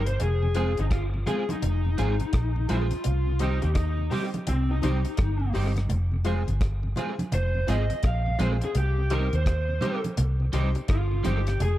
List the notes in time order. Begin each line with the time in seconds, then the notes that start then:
Already playing: G1
0.07 C3 C5, closed hi-hat
0.20 F1 G#4, closed hi-hat, low conga
0.43 F2 C3
0.55 F3 G#3 C4 F4 G#4 C5, closed hi-hat
0.77 G1 F2 C3 D#4, closed hi-hat
0.91 F4, kick, cross-stick, closed hi-hat
1.14 F2 C3
1.26 F3 G#3 C4 F4 G#4 C5, closed hi-hat, high conga, low conga
1.49 F2 C3 D#4, closed hi-hat, high conga
1.62 F1, closed hi-hat, low conga
1.85 F2 C3
1.98 G#1 F3 G#3 C4 F4 G#4 C5, closed hi-hat
2.20 F2 C3 G#4 C5, muted clean electric guitar stroke, closed hi-hat
2.33 A#1, kick, cross-stick, closed hi-hat
2.56 F2 C3
2.68 A#1 F3 G#3 C4 F4 G#4 C5, closed hi-hat, high conga
2.91 F2 C3, muted clean electric guitar stroke, closed hi-hat
3.04 C2, closed hi-hat, low conga
3.26 C3
3.39 D#3 G3 C4 D#4 G4 C5, closed hi-hat
3.62 D#2 C3 G4, closed hi-hat
3.75 D#4, kick, cross-stick, closed hi-hat
3.97 C3
4.11 D#3 G3 C4 D#4 G4 C5, open hi-hat, high conga, low conga
4.33 C3, closed hi-hat, high conga
4.47 C2 C4, closed hi-hat, low conga
4.70 C3 D#4
4.82 C2 D#3 G3 C4 D#4 G4 C5, closed hi-hat, high conga
5.04 C3 G4 C5, muted clean electric guitar stroke, closed hi-hat
5.17 G1, kick, cross-stick, closed hi-hat, high conga
5.40 C3
5.53 G1 D#3 G3 C4 D#4 G4 C5, open hi-hat
5.75 C3, cross-stick, closed hi-hat, high conga
5.89 F1, closed hi-hat, low conga
6.12 F2 C3
6.25 F3 G#3 C4 F4 G#4 C5, closed hi-hat
6.47 G1 F2 C3, closed hi-hat
6.61 kick, cross-stick, closed hi-hat
6.83 F2 C3
6.96 F3 G#3 C4 F4 G#4 C5, closed hi-hat, high conga, low conga
7.18 F2 C3, closed hi-hat, high conga
7.32 F1 C5, closed hi-hat, low conga
7.55 F2 C3
7.67 G#1 F3 G#3 C4 F4 G#4 C5 D#5, closed hi-hat
7.90 F2 C3 G#4 C5, muted clean electric guitar stroke, closed hi-hat
8.03 A#1 F5, kick, cross-stick, closed hi-hat
8.26 F2 C3
8.39 A#1 F3 G#3 C4 F4 G#4 C5 D#5, closed hi-hat, high conga
8.61 F2 C3 G#4, muted clean electric guitar stroke, closed hi-hat
8.75 C2 G4, closed hi-hat, low conga
8.97 C3
9.10 D#3 G3 C4 D#4 G4 A#4 C5, closed hi-hat
9.33 D#2 C3 C5, closed hi-hat
9.46 kick, cross-stick, closed hi-hat
9.68 C3
9.81 D#3 G3 C4 D#4 G4 C5, closed hi-hat, high conga, low conga
10.04 C3, closed hi-hat, high conga
10.17 C2, closed hi-hat, low conga
10.40 C3
10.52 C2 D#3 G3 C4 D#4 G4 C5, closed hi-hat
10.75 C3 G4 C5, muted clean electric guitar stroke, closed hi-hat
10.88 G1 F4, kick, cross-stick, closed hi-hat
11.12 C3
11.23 G1 D#3 G3 C4 D#4 G4 C5, closed hi-hat, high conga
11.47 C3, muted clean electric guitar stroke, cross-stick, closed hi-hat
11.60 F1 G#4, closed hi-hat, low conga